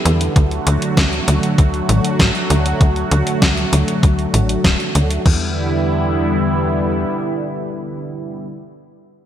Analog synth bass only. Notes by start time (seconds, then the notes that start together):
0.05 E2
0.36 D2
0.67 D2
0.97 D2
1.28 D2
1.58 D2
1.89 A1
2.20 A1
2.50 D2
2.81 D2
3.11 D2
3.42 D2
3.73 D2
4.03 D2
4.34 A1
4.64 D1
4.95 D2
5.26 E2